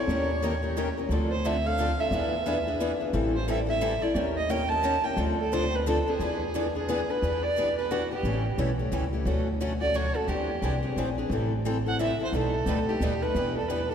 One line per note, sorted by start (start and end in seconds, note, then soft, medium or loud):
0.00 0.94 C#5 medium
0.08 0.89 D#2 medium
0.08 0.29 D#3 medium
0.08 0.29 A#3 medium
0.08 0.29 C#4 medium
0.08 0.29 G4 medium
0.08 0.29 A#4 medium
0.42 0.53 D#3 medium
0.42 0.53 A#3 medium
0.42 0.53 C#4 medium
0.42 0.54 G4 medium
0.42 0.54 A#4 medium
0.63 0.76 C#4 soft
0.63 0.76 G4 medium
0.63 0.76 A#4 medium
0.77 0.87 D#3 medium
0.77 0.87 A#3 medium
0.77 0.87 C#4 medium
0.77 0.88 G4 medium
0.77 0.88 A#4 medium
0.98 1.11 C#4 soft
0.98 1.11 G4 soft
0.98 1.10 A#4 medium
1.09 1.91 D2 medium
1.09 1.31 D3 medium
1.09 1.31 F3 medium
1.09 1.31 C4 medium
1.09 1.31 D4 medium
1.09 1.32 A4 medium
1.32 1.48 C5 medium
1.45 1.55 D3 medium
1.45 1.55 F3 medium
1.45 1.56 C4 medium
1.45 1.56 D4 medium
1.45 1.56 A4 loud
1.45 1.68 E5 medium
1.66 1.79 C4 soft
1.66 1.79 D4 soft
1.66 1.78 A4 medium
1.66 2.01 F5 loud
1.80 1.90 D3 medium
1.80 1.90 F3 medium
1.80 1.90 C4 medium
1.80 1.90 D4 medium
1.80 1.90 A4 loud
1.99 2.13 C4 soft
1.99 2.12 D4 medium
1.99 2.12 A4 medium
1.99 3.01 E5 medium
2.11 2.93 E2 medium
2.11 2.33 E3 medium
2.11 2.33 B3 medium
2.11 2.33 D4 medium
2.11 2.33 G#4 medium
2.11 2.33 B4 medium
2.46 2.57 E3 medium
2.46 2.57 B3 medium
2.46 2.57 D4 medium
2.46 2.57 G#4 medium
2.46 2.58 B4 medium
2.67 2.79 B3 soft
2.67 2.80 D4 soft
2.67 2.80 G#4 medium
2.80 2.91 E3 medium
2.80 2.91 B3 medium
2.80 2.91 D4 medium
2.80 2.91 G#4 medium
2.80 2.92 B4 medium
3.00 3.14 B3 soft
3.00 3.13 D4 soft
3.00 3.13 G#4 soft
3.13 3.95 A1 medium
3.13 3.34 E3 medium
3.13 3.34 G3 medium
3.13 3.34 C4 medium
3.13 3.34 E4 medium
3.13 3.35 A4 medium
3.36 3.48 C5 medium
3.48 3.59 E3 medium
3.48 3.59 G3 medium
3.48 3.59 C4 medium
3.48 3.59 E4 medium
3.48 3.59 A4 medium
3.48 3.59 E5 medium
3.67 3.80 C4 soft
3.67 3.80 E4 soft
3.67 3.80 A4 medium
3.67 4.04 E5 medium
3.81 3.92 E3 medium
3.81 3.92 G3 medium
3.81 3.93 C4 medium
3.81 3.93 E4 loud
3.81 3.93 A4 medium
4.02 4.16 C4 soft
4.02 4.16 E4 soft
4.02 4.15 A4 medium
4.02 4.16 D5 medium
4.15 4.97 D#2 medium
4.15 4.36 D#3 medium
4.15 4.36 A#3 medium
4.15 4.36 C#4 medium
4.15 4.36 G4 medium
4.15 4.37 A#4 medium
4.37 4.52 D#5 medium
4.49 4.60 D#3 medium
4.49 4.61 A#3 medium
4.49 4.61 C#4 medium
4.49 4.61 G4 medium
4.49 4.61 A#4 loud
4.49 4.71 G5 medium
4.69 4.83 C#4 soft
4.69 4.83 G4 medium
4.69 4.83 A#4 medium
4.69 5.06 A5 loud
4.83 4.94 D#3 medium
4.83 4.95 A#3 medium
4.83 4.95 C#4 medium
4.83 4.95 G4 medium
4.83 4.95 A#4 loud
5.03 5.17 C#4 soft
5.03 5.17 G4 medium
5.03 5.17 A#4 medium
5.03 5.18 G5 medium
5.17 5.99 D2 medium
5.17 5.38 D3 medium
5.17 5.38 F3 medium
5.17 5.38 C4 medium
5.17 5.38 D4 medium
5.17 5.38 A4 medium
5.40 5.55 A4 medium
5.53 5.63 D3 medium
5.53 5.63 F3 medium
5.53 5.63 C4 medium
5.53 5.64 D4 medium
5.53 5.64 A4 loud
5.53 5.77 C5 medium
5.73 5.86 C4 soft
5.73 5.86 D4 soft
5.73 5.86 A4 medium
5.73 5.88 B4 medium
5.87 5.97 D3 medium
5.87 5.97 F3 medium
5.87 5.98 C4 medium
5.87 5.97 D4 medium
5.87 5.98 A4 loud
5.87 6.11 A4 medium
6.08 6.20 C4 soft
6.08 6.19 D4 medium
6.08 6.75 G#4 medium
6.08 6.20 A4 soft
6.19 7.01 E2 medium
6.19 6.41 E3 medium
6.19 6.41 B3 medium
6.19 6.41 D4 medium
6.19 6.41 G#4 medium
6.19 6.42 B4 medium
6.55 6.65 E3 medium
6.55 6.66 B3 medium
6.55 6.66 D4 medium
6.55 6.66 G#4 medium
6.55 6.66 B4 medium
6.75 6.87 B3 soft
6.75 6.88 D4 medium
6.75 6.88 G#4 soft
6.75 7.12 G#4 medium
6.89 6.99 E3 medium
6.89 6.99 B3 medium
6.89 7.00 D4 medium
6.89 6.99 G#4 medium
6.89 7.00 B4 medium
7.09 7.22 B3 soft
7.09 7.22 D4 soft
7.09 7.22 G#4 medium
7.09 7.45 B4 medium
7.22 8.04 E2 medium
7.22 7.43 E3 medium
7.22 7.43 B3 medium
7.22 7.43 D4 medium
7.22 7.43 G4 medium
7.22 7.44 B4 medium
7.43 7.77 D5 medium
7.58 7.68 E3 medium
7.58 7.68 B3 medium
7.58 7.68 D4 medium
7.58 7.68 G4 medium
7.58 7.68 B4 medium
7.78 7.90 B3 soft
7.78 7.90 D4 soft
7.78 7.90 G4 medium
7.78 7.93 B4 medium
7.91 8.01 E3 medium
7.91 8.02 B3 medium
7.91 8.02 D4 medium
7.91 8.11 F#4 medium
7.91 8.02 G4 medium
7.91 8.02 B4 medium
8.11 8.25 B3 soft
8.11 8.24 D4 soft
8.11 8.24 G4 soft
8.11 8.57 G4 medium
8.23 8.51 A1 medium
8.23 8.45 C#3 medium
8.23 8.45 E3 medium
8.23 8.45 G3 medium
8.23 8.45 A3 medium
8.23 8.45 C#4 medium
8.23 8.45 E4 medium
8.23 8.46 G4 medium
8.23 8.46 A4 medium
8.58 8.87 B1 medium
8.58 8.69 C#3 medium
8.58 8.69 E3 medium
8.58 8.69 G3 medium
8.58 8.69 A3 medium
8.58 8.69 C#4 medium
8.58 8.70 E4 medium
8.58 8.70 G4 medium
8.58 8.70 A4 medium
8.79 8.91 A3 soft
8.79 8.91 C#4 soft
8.79 8.92 G4 medium
8.92 9.21 C#2 medium
8.92 9.03 C#3 medium
8.92 9.03 E3 medium
8.92 9.03 G3 medium
8.92 9.03 A3 medium
8.92 9.03 C#4 medium
8.92 9.03 E4 medium
8.92 9.03 G4 medium
8.92 9.04 A4 medium
9.13 9.26 A3 soft
9.13 9.26 C#4 soft
9.13 9.26 G4 soft
9.25 10.08 D2 medium
9.25 9.47 D3 medium
9.25 9.47 F#3 medium
9.25 9.47 A3 medium
9.25 9.47 C#4 medium
9.25 9.47 F#4 medium
9.25 9.47 A4 medium
9.61 9.71 D3 medium
9.61 9.72 F#3 medium
9.61 9.72 A3 medium
9.61 9.72 C#4 medium
9.61 9.72 F#4 medium
9.61 9.72 A4 medium
9.81 9.94 A3 soft
9.81 9.94 C#4 soft
9.81 9.94 F#4 medium
9.81 9.97 D5 medium
9.95 10.06 D3 medium
9.95 10.06 F#3 medium
9.95 10.06 A3 medium
9.95 10.06 C#4 medium
9.95 10.06 F#4 medium
9.95 10.06 A4 medium
9.95 10.17 C#5 medium
10.15 10.28 A3 soft
10.15 10.28 C#4 soft
10.15 10.28 F#4 medium
10.15 10.30 A4 medium
10.28 10.55 E2 medium
10.28 10.49 E3 medium
10.28 10.49 C4 medium
10.28 10.49 D4 medium
10.28 10.97 G4 medium
10.28 10.49 G#4 medium
10.28 10.49 C5 medium
10.62 10.91 C2 medium
10.62 10.73 E3 medium
10.62 10.74 C4 medium
10.62 10.74 D4 medium
10.62 10.74 G#4 medium
10.62 10.74 C5 medium
10.83 10.97 C4 soft
10.83 10.97 D4 soft
10.83 10.96 G#4 medium
10.96 11.25 A#1 medium
10.96 11.08 E3 medium
10.96 11.08 C4 medium
10.96 11.08 D4 medium
10.96 11.08 G#4 medium
10.96 11.09 C5 medium
11.18 11.31 C4 soft
11.18 11.31 D4 soft
11.18 11.31 G#4 medium
11.29 12.12 A1 medium
11.29 11.52 E3 medium
11.29 11.52 G3 medium
11.29 11.52 C4 medium
11.29 11.52 E4 medium
11.29 11.52 A4 medium
11.65 11.76 E3 medium
11.65 11.76 G3 medium
11.65 11.76 C4 medium
11.65 11.76 E4 medium
11.65 11.76 A4 medium
11.86 11.99 C4 soft
11.86 11.99 E4 soft
11.86 11.99 A4 medium
11.86 12.00 F#5 medium
12.00 12.10 E3 medium
12.00 12.10 G3 medium
12.00 12.11 C4 medium
12.00 12.11 E4 medium
12.00 12.11 A4 medium
12.00 12.19 E5 medium
12.20 12.34 C4 soft
12.20 12.33 E4 soft
12.20 12.33 A4 soft
12.24 12.34 C5 medium
12.32 12.60 B1 medium
12.32 12.54 B2 medium
12.32 12.54 G3 medium
12.32 12.54 A3 medium
12.32 12.55 D#4 medium
12.32 12.55 A4 medium
12.32 12.54 B4 medium
12.37 12.91 A4 medium
12.66 12.95 D2 medium
12.66 12.79 B2 medium
12.66 12.79 G3 medium
12.66 12.79 A3 medium
12.66 12.79 D#4 medium
12.66 12.79 A4 medium
12.66 12.78 B4 medium
12.89 13.01 A3 soft
12.89 13.01 D#4 soft
12.89 13.24 G4 medium
12.89 13.01 A4 medium
13.00 13.29 D#2 medium
13.00 13.13 B2 medium
13.00 13.12 G3 medium
13.00 13.13 A3 medium
13.00 13.13 D#4 medium
13.00 13.13 A4 medium
13.00 13.13 B4 medium
13.22 13.36 A3 soft
13.22 13.35 D#4 soft
13.22 13.35 A4 soft
13.22 13.56 B4 medium
13.35 13.95 E2 medium
13.35 13.56 E3 medium
13.35 13.56 B3 medium
13.35 13.56 D4 medium
13.35 13.56 G4 medium
13.35 13.56 B4 medium
13.57 13.70 A4 medium
13.69 13.80 E3 medium
13.69 13.80 B3 medium
13.69 13.80 D4 medium
13.69 13.80 G4 medium
13.69 13.91 B4 medium
13.69 13.81 B4 medium
13.90 13.95 G4 soft
13.90 13.95 A4 medium